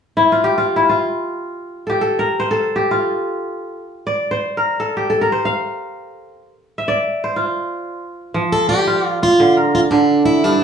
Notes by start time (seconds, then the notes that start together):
0.17 E4
0.32 F4
0.44 G4
0.58 F4
0.76 E4
0.89 F4
1.87 G4 A4
2.01 A4
2.19 A#4
2.40 C5
2.51 A4
2.76 G4
2.91 F4
4.07 D5
4.31 C5
4.57 A#4
4.80 A4
4.97 G4
5.10 A4
5.21 A#4
5.32 C5
5.45 F5
6.78 E5
6.88 D5
7.24 C5
7.36 F4
8.34 F3
8.52 A4
8.69 G4 D5
8.87 F4
9.22 F4
9.40 D3
9.57 A#4
9.75 F4
9.91 D3 D4
10.26 E4
10.44 G2 D4
10.52 A5